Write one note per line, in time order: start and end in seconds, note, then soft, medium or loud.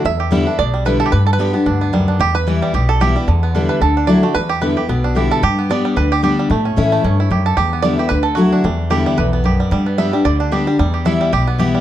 0.04 0.44 E2 medium
0.04 0.56 E2 loud
0.04 0.46 E5 loud
0.20 1.03 G4 medium
0.31 0.45 D3 medium
0.31 0.46 G3 loud
0.31 0.73 G3 medium
0.31 0.46 B3 loud
0.31 0.45 E4 loud
0.47 0.59 B3 medium
0.47 0.83 D4 medium
0.47 0.58 E4 medium
0.59 0.98 B1 medium
0.59 1.10 B2 loud
0.59 0.86 D5 loud
0.74 1.30 G3 medium
0.85 1.11 D3 medium
0.85 1.11 G3 loud
0.85 1.12 B3 loud
0.85 1.12 E4 loud
0.85 0.99 B4 medium
1.00 1.06 A4 medium
1.06 1.12 G4 medium
1.12 1.64 G2 loud
1.12 1.52 G2 loud
1.12 1.26 B4 loud
1.27 1.33 A4 medium
1.33 1.54 B4 medium
1.38 1.78 D3 medium
1.38 1.53 G3 medium
1.38 1.54 B3 loud
1.38 1.54 D4 medium
1.38 1.52 G4 loud
1.53 1.80 B3 medium
1.53 1.66 D4 medium
1.53 1.65 G4 medium
1.66 2.05 D2 medium
1.66 1.92 G2 medium
1.66 2.05 D4 medium
1.81 2.18 B3 medium
1.93 2.19 F#2 medium
1.93 2.20 G3 medium
2.08 2.20 D4 medium
2.19 2.71 E2 medium
2.19 2.59 E2 loud
2.19 2.35 G4 loud
2.35 2.60 B4 loud
2.47 2.72 E3 loud
2.47 2.86 E3 medium
2.47 2.73 G3 medium
2.47 2.73 B3 medium
2.47 2.73 E4 loud
2.62 2.98 G3 medium
2.74 3.13 B1 medium
2.74 3.25 B2 loud
2.74 3.00 G4 medium
2.89 3.01 A4 loud
3.00 3.15 E3 medium
3.00 3.15 G3 medium
3.00 3.15 B3 loud
3.00 3.15 E4 loud
3.00 3.26 G4 medium
3.16 3.28 G3 medium
3.16 3.28 B3 medium
3.16 3.27 E4 medium
3.28 3.67 E2 loud
3.28 3.79 E2 medium
3.28 3.66 D3 medium
3.43 3.69 B3 medium
3.55 3.80 D3 medium
3.55 3.80 G3 medium
3.55 3.81 B3 medium
3.55 3.97 D4 medium
3.55 3.81 E4 medium
3.69 3.81 B4 medium
3.81 4.20 D2 medium
3.81 4.33 D3 medium
3.81 4.06 A4 loud
3.97 5.04 D4 medium
4.07 4.22 F#3 medium
4.07 4.23 A3 medium
4.07 4.23 E4 loud
4.07 4.22 F#4 medium
4.07 4.34 D5 loud
4.23 4.35 A3 medium
4.23 4.35 E4 soft
4.23 4.34 F#4 medium
4.35 4.74 E2 medium
4.35 4.86 E2 loud
4.35 4.50 B4 loud
4.49 4.62 G4 medium
4.61 4.76 D3 medium
4.61 4.76 G3 medium
4.61 4.76 B3 medium
4.61 4.75 E4 medium
4.61 4.89 B4 medium
4.76 4.89 B3 medium
4.76 4.88 E4 medium
4.76 5.13 G4 medium
4.89 5.28 B1 medium
4.89 5.40 B2 medium
4.89 5.28 B3 medium
5.04 5.40 D4 medium
5.15 5.41 D3 medium
5.15 5.41 G3 medium
5.15 5.42 B3 loud
5.15 5.42 E4 loud
5.15 5.42 G4 medium
5.31 5.43 A4 loud
5.43 5.82 G2 medium
5.43 5.94 G2 loud
5.43 5.71 G4 loud
5.59 5.94 B3 medium
5.69 5.95 G3 medium
5.69 5.95 B3 medium
5.69 5.96 D4 medium
5.69 5.96 G4 loud
5.69 5.96 D5 loud
5.85 6.21 G3 medium
5.96 6.36 D2 medium
5.96 6.47 D3 loud
5.96 6.12 B4 loud
6.12 6.22 G4 medium
6.22 6.48 G3 medium
6.22 6.49 B3 medium
6.22 6.49 D4 loud
6.22 6.62 G4 medium
6.22 6.49 G4 loud
6.39 6.50 G3 medium
6.50 7.01 A2 medium
6.50 6.69 A2 medium
6.50 6.89 A3 medium
6.65 7.01 C#4 medium
6.76 7.00 A2 medium
6.76 7.02 E3 medium
6.76 7.02 A3 loud
6.76 7.03 C#4 loud
6.76 7.20 E4 medium
6.76 7.03 E4 loud
6.92 7.28 A3 medium
7.04 7.26 G2 medium
7.04 7.30 G2 medium
7.04 7.43 C#4 medium
7.20 7.82 E4 medium
7.30 7.53 F#2 medium
7.30 7.56 F#2 medium
7.30 7.56 G4 medium
7.46 7.57 A4 medium
7.57 7.96 E2 medium
7.57 8.09 E2 loud
7.57 7.85 G4 loud
7.73 8.09 B3 medium
7.82 7.98 D3 medium
7.82 7.98 G3 medium
7.82 7.98 B3 loud
7.82 7.96 E4 loud
7.82 8.08 D5 loud
7.98 8.11 B3 medium
7.98 8.10 E4 medium
7.98 8.11 G4 medium
8.09 8.50 D2 medium
8.09 8.62 D3 medium
8.09 8.25 B4 loud
8.23 8.37 A4 medium
8.35 8.63 F#3 medium
8.35 8.63 A3 loud
8.35 8.63 E4 loud
8.35 8.64 F#4 medium
8.35 8.63 F#4 loud
8.52 9.92 D4 medium
8.64 9.15 E2 loud
8.64 9.04 E2 loud
8.64 9.06 G3 medium
8.90 9.16 D3 medium
8.90 9.16 G3 loud
8.90 9.17 B3 loud
8.90 9.17 E4 medium
8.90 9.19 G4 medium
9.06 9.60 G3 medium
9.17 9.57 B1 medium
9.17 9.43 E2 loud
9.17 9.32 B4 medium
9.33 9.86 B3 medium
9.44 9.70 F#2 medium
9.44 10.52 G4 medium
9.60 9.72 G3 medium
9.71 10.11 G2 medium
9.71 10.23 G2 loud
9.71 10.10 G3 medium
9.86 10.23 B3 medium
9.98 10.12 G3 medium
9.98 10.13 B3 medium
9.98 10.13 D4 loud
9.98 10.12 G4 medium
9.98 10.25 E5 loud
10.13 10.50 G3 medium
10.13 10.25 D4 medium
10.13 10.25 G4 medium
10.25 10.64 D2 medium
10.25 10.76 D3 loud
10.25 10.39 D5 loud
10.40 10.77 D4 medium
10.52 10.66 G3 medium
10.52 10.66 B3 medium
10.52 10.66 D4 medium
10.52 10.79 G4 medium
10.52 10.66 G4 medium
10.67 10.78 G3 medium
10.67 10.79 D4 medium
10.67 10.79 G4 medium
10.79 11.18 E2 loud
10.79 11.30 E2 medium
10.79 11.18 G3 medium
10.94 11.30 G4 medium
11.05 11.31 E3 loud
11.05 11.31 G3 loud
11.05 11.32 B3 medium
11.05 11.32 E4 loud
11.05 11.31 E5 loud
11.21 11.57 G3 medium
11.33 11.72 B1 medium
11.33 11.81 B2 loud
11.33 11.47 G4 medium
11.47 11.81 B3 medium
11.58 11.81 E3 medium
11.58 11.81 G3 loud
11.58 11.81 B3 loud
11.58 11.81 E4 loud
11.58 11.81 G4 medium
11.74 11.81 G3 medium